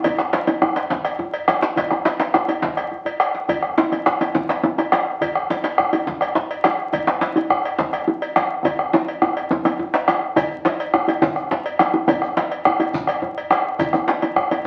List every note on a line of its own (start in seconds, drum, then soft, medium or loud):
0.04 bombo rim soft
0.04 bombo low medium
0.04 cowbell medium
0.04 djembe tone medium
0.04 djembe bass medium
0.18 bombo rim medium
0.18 djembe slap medium
0.33 cowbell soft
0.33 djembe slap medium
0.33 djembe tone medium
0.47 bombo rim soft
0.47 cowbell soft
0.47 djembe tone loud
0.62 bombo rim medium
0.62 djembe slap soft
0.62 djembe tone medium
0.62 djembe bass medium
0.76 cowbell soft
0.76 djembe slap medium
0.90 bombo low medium
0.90 djembe slap medium
0.90 djembe tone medium
1.05 bombo rim medium
1.05 cowbell medium
1.19 djembe slap soft
1.19 djembe bass medium
1.34 cowbell soft
1.48 bombo rim medium
1.48 cowbell medium
1.48 djembe slap medium
1.48 djembe tone medium
1.62 bombo rim soft
1.62 djembe slap medium
1.76 bombo low medium
1.76 cowbell medium
1.76 djembe slap medium
1.76 djembe bass medium
1.91 bombo rim medium
1.91 djembe tone medium
2.05 cowbell soft
2.05 djembe slap medium
2.05 djembe tone medium
2.20 cowbell soft
2.20 djembe slap medium
2.20 djembe slap soft
2.34 bombo rim medium
2.34 djembe slap medium
2.34 djembe bass medium
2.48 cowbell soft
2.48 djembe tone medium
2.62 bombo low medium
2.62 djembe slap medium
2.62 djembe tone medium
2.77 bombo rim medium
2.77 cowbell soft
2.92 djembe bass soft
3.05 cowbell soft
3.05 djembe bass soft
3.20 bombo rim medium
3.20 cowbell soft
3.20 djembe slap soft
3.34 djembe slap medium
3.48 bombo rim soft
3.48 bombo low medium
3.48 cowbell medium
3.48 djembe bass medium
3.63 bombo rim medium
3.78 cowbell soft
3.78 djembe slap medium
3.78 djembe tone medium
3.78 djembe tone loud
3.92 bombo rim soft
3.92 cowbell soft
3.92 djembe tone medium
4.06 bombo rim medium
4.06 djembe slap soft
4.06 djembe slap medium
4.06 djembe bass medium
4.21 cowbell medium
4.21 djembe tone medium
4.35 bombo low medium
4.35 djembe slap medium
4.35 djembe tone medium
4.49 bombo rim medium
4.49 cowbell soft
4.49 djembe slap medium
4.63 djembe slap soft
4.63 djembe tone loud
4.63 djembe bass medium
4.78 cowbell soft
4.78 djembe tone medium
4.92 bombo rim medium
4.92 cowbell medium
4.92 djembe slap medium
4.92 djembe tone medium
5.07 bombo rim soft
5.21 bombo rim soft
5.21 bombo low medium
5.21 cowbell medium
5.21 djembe bass medium
5.35 bombo rim medium
5.50 cowbell soft
5.50 djembe slap medium
5.50 djembe tone medium
5.64 bombo rim soft
5.64 cowbell soft
5.64 djembe slap medium
5.78 bombo rim medium
5.78 djembe slap soft
5.78 djembe bass medium
5.93 cowbell soft
5.93 djembe bass medium
6.07 bombo low medium
6.07 djembe slap medium
6.07 djembe tone medium
6.21 bombo rim medium
6.21 cowbell soft
6.35 djembe slap medium
6.35 djembe slap soft
6.35 djembe bass medium
6.51 cowbell soft
6.64 bombo rim medium
6.64 cowbell soft
6.64 djembe slap medium
6.64 djembe tone medium
6.64 djembe bass medium
6.93 bombo rim soft
6.93 bombo low loud
6.93 cowbell medium
6.93 djembe bass medium
7.07 bombo rim medium
7.07 djembe slap medium
7.21 cowbell soft
7.21 djembe slap medium
7.21 djembe tone medium
7.36 bombo rim soft
7.36 cowbell soft
7.36 djembe bass medium
7.50 bombo rim medium
7.50 djembe slap soft
7.50 djembe bass medium
7.65 cowbell soft
7.79 bombo low loud
7.79 djembe slap medium
7.79 djembe tone medium
7.93 bombo rim medium
7.93 cowbell soft
8.08 djembe slap soft
8.08 djembe bass medium
8.22 cowbell soft
8.36 bombo rim medium
8.36 cowbell soft
8.36 djembe slap medium
8.36 djembe tone medium
8.51 bombo rim soft
8.65 bombo low medium
8.65 cowbell medium
8.65 djembe slap soft
8.65 djembe tone medium
8.65 djembe bass medium
8.79 bombo rim medium
8.93 djembe slap medium
8.93 djembe tone medium
8.93 djembe tone loud
9.08 cowbell soft
9.22 bombo rim medium
9.22 djembe tone medium
9.22 djembe bass medium
9.37 cowbell soft
9.37 djembe slap soft
9.51 bombo low medium
9.51 djembe slap medium
9.51 djembe tone medium
9.65 bombo rim medium
9.65 cowbell soft
9.65 djembe tone medium
9.79 djembe bass medium
9.94 cowbell soft
9.94 djembe slap medium
10.08 bombo rim medium
10.08 cowbell soft
10.08 djembe slap medium
10.08 djembe tone medium
10.22 bombo rim soft
10.36 bombo rim soft
10.36 bombo low medium
10.36 cowbell medium
10.36 djembe tone loud
10.36 djembe bass medium
10.36 shekere soft
10.51 shekere soft
10.65 cowbell medium
10.65 djembe slap medium
10.65 djembe tone medium
10.79 bombo rim soft
10.79 cowbell soft
10.94 bombo rim medium
10.94 djembe slap soft
10.94 djembe tone medium
10.94 djembe bass medium
11.08 cowbell medium
11.08 djembe bass medium
11.22 bombo low medium
11.22 djembe slap medium
11.22 djembe tone loud
11.22 djembe tone medium
11.22 shekere medium
11.36 bombo rim medium
11.36 shekere soft
11.51 djembe slap medium
11.51 djembe slap soft
11.51 djembe bass medium
11.66 cowbell soft
11.79 bombo rim medium
11.79 cowbell soft
11.79 djembe slap medium
11.79 djembe tone medium
11.94 bombo rim soft
11.94 djembe bass medium
12.08 bombo rim soft
12.08 bombo low medium
12.08 cowbell medium
12.08 djembe tone medium
12.08 djembe bass medium
12.08 shekere soft
12.22 bombo rim medium
12.22 shekere soft
12.37 cowbell soft
12.37 djembe slap medium
12.37 djembe tone medium
12.51 bombo rim soft
12.51 cowbell soft
12.65 bombo rim medium
12.65 djembe slap soft
12.65 djembe tone medium
12.65 djembe bass medium
12.80 cowbell soft
12.80 djembe bass medium
12.93 bombo low loud
12.93 djembe slap medium
12.93 djembe tone medium
12.93 shekere medium
13.07 bombo rim medium
13.07 cowbell medium
13.07 shekere soft
13.22 djembe slap soft
13.22 djembe bass medium
13.38 cowbell soft
13.50 bombo rim loud
13.50 cowbell medium
13.50 djembe slap medium
13.50 djembe tone medium
13.65 bombo rim soft
13.79 bombo rim soft
13.79 bombo low loud
13.79 cowbell medium
13.79 djembe tone medium
13.79 djembe bass medium
13.79 shekere medium
13.93 bombo rim medium
13.93 djembe tone medium
13.93 shekere soft
14.08 cowbell soft
14.08 djembe slap medium
14.08 djembe tone medium
14.22 bombo rim soft
14.22 cowbell soft
14.22 djembe tone medium
14.36 bombo rim medium
14.36 djembe slap soft
14.36 djembe bass medium
14.51 cowbell medium
14.51 djembe tone medium